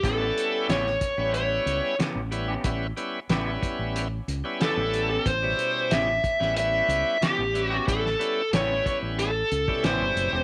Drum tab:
HH |x-x-x-x-x-x-x-x-|x-x-x-x-x-x-x-x-|x-x-x-x-x-x-x-x-|x-x-x-x-x-x-x-x-|
SD |----oo------o---|----o-------o---|----o--o----o---|-o--o-------o---|
BD |o-----o---------|o-----o---------|o-----o---------|o-----o----o----|